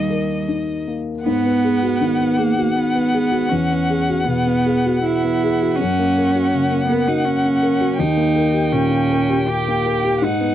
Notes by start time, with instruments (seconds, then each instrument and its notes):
Already playing: felt piano D#2 A#3 D#4, cello G3, violin D#5
0.10 felt piano A#4
0.48 felt piano D#4
0.87 felt piano A#3
1.24 felt piano G#2, cello B3, violin F#5
1.45 felt piano B3
1.64 felt piano G#4
1.83 felt piano F#4
2.01 felt piano D#3
2.19 felt piano B3
2.37 cello A#3, felt piano G#4
2.59 felt piano F#4
2.76 cello B3
2.95 felt piano B3
3.14 felt piano G#4
3.32 felt piano F#4
3.49 felt piano E2, cello C#4
3.71 felt piano B3
3.90 felt piano G#4
4.09 felt piano F#4
4.24 felt piano B2, cello B3
4.46 felt piano B3
4.66 felt piano G#4
4.86 felt piano F#4
5.03 cello E4
5.24 felt piano B3
5.44 felt piano G#4
5.62 felt piano F#4
5.76 cello C#4, violin F#5
5.81 felt piano F#2
5.99 felt piano A#3
6.18 felt piano A#4
6.36 felt piano F#4
6.54 felt piano C#3
6.71 felt piano A#3
6.87 cello B3, felt piano A#4
7.08 cello D#4, felt piano F#4
7.25 cello C#4
7.45 felt piano A#3
7.63 felt piano A#4
7.81 felt piano F#4
7.98 felt piano D#2, cello D#4, violin G5
8.17 felt piano A#3
8.36 felt piano A#4
8.54 felt piano G4
8.72 felt piano A#2, cello C#4
8.91 felt piano A#3
9.10 felt piano A#4
9.29 felt piano G4
9.48 cello G4
9.68 felt piano A#3
9.86 felt piano A#4
10.05 felt piano G4
10.22 felt piano G#2, cello D#4, violin F#5
10.41 felt piano B3